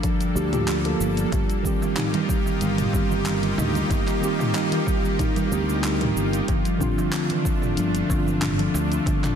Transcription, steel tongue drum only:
0.03 F3
0.20 F3
0.35 G4
0.53 F4
0.67 G4
1.32 G3
1.65 G3
1.81 G3
1.97 D#4
2.14 G3
2.93 G3
3.26 G3
3.43 G3
3.58 D#4
3.75 G3
4.55 G3
4.87 G3
5.04 G3
5.19 D#4
5.36 G3
6.16 G3
6.48 F3
6.65 F3
6.80 D4
6.98 F3
7.77 F3
8.10 F3
8.27 F3
8.42 D4
8.59 F3

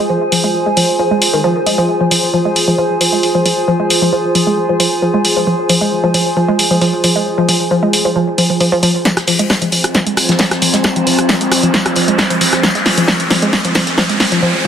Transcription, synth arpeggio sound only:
0.10 F3
0.32 F3
0.44 G#3
0.66 G#3
0.77 F3
0.99 F3
1.11 G#3
1.33 D#3
1.44 F3
1.66 G#3
1.78 F3
2.01 F3
2.11 F3
2.34 F3
2.45 G#3
2.68 F3
2.78 F3
3.01 F3
3.13 G#3
3.35 F3
3.46 F3
3.68 F3
3.80 G#3
4.02 F3
4.13 F3
4.35 F3
4.47 G#3
4.69 F3
4.80 F3
5.02 F3
5.14 G#3
5.36 F3
5.47 F3
5.69 F3
5.81 G#3
6.04 F3
6.14 F3
6.37 F3
6.48 G#3
6.71 F3
6.81 F3
7.04 F3
7.16 G#3
7.38 F3
7.49 F3
7.71 F3
7.83 G#3
8.05 F3
8.16 F3
8.38 F3
8.50 F3
8.60 F3
8.72 F3
8.83 F3
9.05 F3
9.28 F3
9.39 G#3
9.62 F3
9.72 F3
9.95 F3
10.07 G#3
10.29 F3
10.40 F3
10.62 F3
10.74 G#3
10.96 F3
11.07 F3
11.29 F3
11.41 G#3
11.63 F3
11.74 F3
11.96 F3
12.08 G#3
12.30 F3
12.41 F3
12.63 F3
12.75 G#3
12.98 F3
13.08 F3
13.31 F3
13.42 G#3
13.65 F3
13.75 F3
13.98 F3
14.09 G#3
14.32 F3
14.42 F3

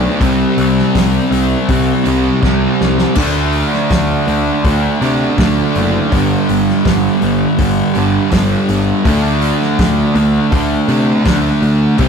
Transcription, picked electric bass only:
0.21 C2
0.58 C2
0.95 C2
1.31 C2
1.69 C2
2.06 C2
2.43 C2
2.81 C2
3.16 D2
3.91 D2
4.27 D2
4.64 D2
5.01 C3
5.38 D2
5.76 F#1
6.12 G1
6.49 G1
6.85 G1
7.22 G1
7.59 G1
7.96 G1
8.32 G1
8.69 G1
9.05 D2
9.79 D2
10.15 D2
10.52 D2
10.88 C3
11.26 D2
11.62 D2
11.99 C2

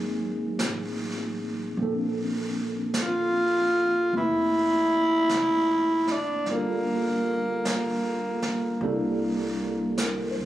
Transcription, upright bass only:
Already playing: G#1
0.60 A1
1.77 A#1
4.13 F1
5.30 F1
6.46 G1
8.42 muted upright bass stroke
8.81 C2
10.37 D2

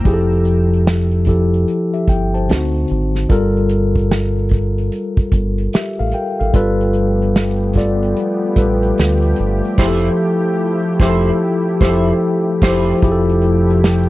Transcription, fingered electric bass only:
0.06 F1
2.09 G1
2.50 D2
2.91 G#1
3.31 G1
5.33 G1
6.00 A1
6.41 G#1
6.55 G1
8.57 A1
8.99 D2
9.40 G1
9.79 F1
11.01 F1
11.82 F1
12.63 F1
13.03 F1

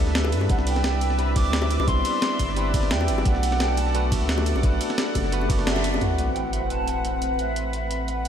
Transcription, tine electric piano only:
Already playing: G3 B3 A4
0.00 D4 E4 D5
0.48 G3 C4 D4 E4 B4
1.18 G3 C4 D4 E4 B4
1.35 G3 C4 D4 E4 D5
1.86 G3 B3 C4 D4 E4
2.56 G3 C4 D4 E4 B4
2.73 G3 C4 D4 E4 D5
3.24 A3 B3 D4 F#4 B4
3.94 A3 B3 D4 F#4 B4
4.10 A3 B3 D4 F#4 E5
4.62 A3 B3 D4 F#4 B4
5.32 A3 B3 D4 F#4 B4
5.48 A3 B3 D4 F#4 D5
6.00 A3 C4 E4 F#4 B4

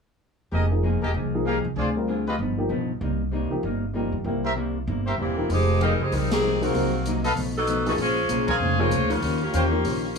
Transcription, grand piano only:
0.71 F3 A#3 D#4 G#4
1.35 F3 A#3 D#4 G#4
1.97 G3 C4 F4 A#4
2.58 F3 A#3 D#4 G4
3.50 F3 A#3 D#4 G4
3.95 F3 A#3 D#4 G4
4.25 A#3 C4 E4 G4
5.37 F3 A#3 D#4 G4
6.62 A#3 D#4 G#4 C5
6.74 A#3 D#4 G#4 C5
7.86 F3 A#3 D#4 G#4
8.79 F3 A#3 D#4 G#4
9.09 F3 A#3 D#4 F4
9.72 F3 A#3 D#4 G4

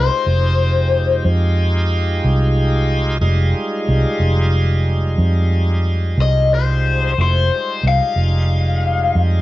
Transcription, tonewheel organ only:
Already playing: G#3 D#4 F4 G4
3.22 G3 G#3 D#4 F4
7.19 G#3 A3 E4 F#4
7.52 G3 G#3 D#4 F4

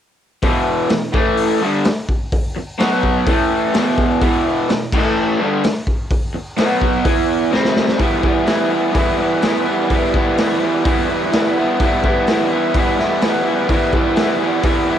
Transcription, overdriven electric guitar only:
0.43 E2 B2 E3
0.90 E2 B2
1.12 A2 E3 A3
1.61 G2 D3 G3
2.56 muted overdriven electric guitar stroke
2.78 B2 F#3 B3
3.27 A2 E3 A3
3.73 E2 B2 E3
4.20 E2 B2 E3
4.69 E2 B2
4.93 A2 E3 A3
5.39 G2 D3 G3
6.34 muted overdriven electric guitar stroke
6.57 B2 F#3 B3
7.05 E3 B3 E4
7.51 C3 G3 C4
7.97 E3 G3 B3
8.02 E4
8.22 B3 E4
8.26 G3
8.46 E3 G3 B3
8.50 E4
8.70 B3 E4
8.74 G3
8.93 E3 G3 B3
8.98 E4
9.19 B3 E4
9.23 G3
9.42 E3 G3 B3
9.47 E4
9.65 B3 E4
9.70 G3
9.90 E3 G3 B3
9.94 E4
10.13 B3 E4
10.19 G3
10.37 E3 G3
10.41 B3 E4
10.60 B3 E4
10.65 G3
10.83 E3 G3 B3
10.88 E4
11.06 B3 E4
11.11 G3
11.32 E3 G3 B3
11.36 E4
11.57 B3 E4
11.61 G3
11.80 E3 G3 B3
11.85 E4
12.03 B3 E4
12.08 G3
12.27 E3 G3 B3
12.32 E4
12.50 B3 E4
12.55 G3
12.74 E3 G3 B3
12.79 E4
12.99 B3 E4
13.03 G3
13.22 E3 G3 B3
13.27 E4
13.45 B3 E4
13.50 G3
13.68 E3 G3 B3
13.74 E4
13.93 B3 E4
13.98 G3
14.15 E3 G3 B3
14.21 E4
14.40 B3 E4
14.44 G3
14.62 E3 G3 B3
14.67 E4
14.87 G3 B3 E4

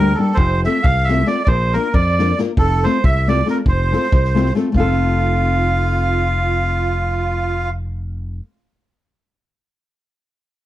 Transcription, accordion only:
Already playing: A#4
0.19 A4
0.39 C5
0.66 E5
0.88 F5
1.11 E5
1.31 D5
1.45 D5
1.50 C5
1.78 A#4
1.98 D5
2.61 A4
2.87 C5
3.06 E5
3.29 D5
3.50 A#4
3.67 C5
4.75 F4

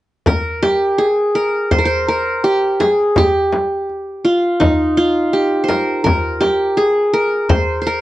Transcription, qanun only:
0.27 A#4
0.62 G4
0.98 G#4
1.35 A#4
1.71 C5
1.79 A#4
1.86 C5
2.08 A#4
2.44 G4
2.80 G#4
3.17 G4
4.25 F4
4.60 D#4
4.97 F4
5.33 G4
5.64 C5
5.69 A#4
6.04 A#4
6.41 G4
6.77 G#4
7.14 A#4
7.49 C5
7.82 C5
7.87 A#4

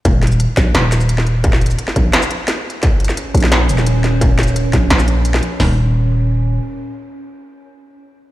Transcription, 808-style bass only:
0.05 D#1
0.57 A#1
0.74 D#1
1.96 A#1
3.34 A#1
3.69 D#1
4.73 A#1
4.90 A#1
5.60 D#1

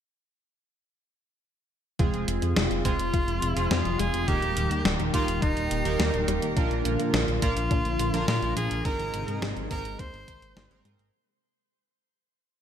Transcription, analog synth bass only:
1.99 F1
2.14 F1
2.28 F1
2.42 F2
2.56 F1
2.71 F1
2.85 F1
2.99 F1
3.14 F1
3.28 F1
3.42 F1
3.56 F1
3.71 F2
3.85 F1
3.99 F1
4.14 F1
4.28 D#1
4.42 D#1
4.56 D#1
4.71 D#2
4.85 D#1
4.99 D#1
5.14 D#1
5.28 D#1
5.42 D#1
5.57 D#1
5.71 D#1
5.85 D#1
6.00 D#2
6.14 D#1
6.28 D#1
6.42 D#1
6.57 A#1
6.71 A#1
6.85 A#1
6.99 A#2
7.14 A#1
7.28 A#1
7.42 A#1
7.57 A#1
7.71 A#1
7.85 A#1
7.99 A#1
8.14 A#1
8.28 A#2
8.42 A#1
8.57 A#1
8.71 A#1
8.85 G#1
8.99 G#1
9.14 G#1
9.28 G#2
9.42 G#1
9.57 G#1
9.71 G#1
9.85 G#1
9.99 D#2
10.14 G#1
10.28 G#1
10.42 G#1
10.57 G#1
10.71 G#1
10.85 G#2
10.99 G#1

